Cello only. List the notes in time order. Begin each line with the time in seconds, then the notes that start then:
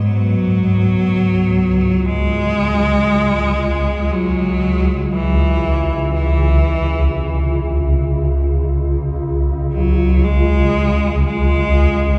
0.04 F#3
2.05 G#3
4.12 F#3
5.12 E3
6.14 E3
9.72 F#3
10.24 G#3
11.26 G#3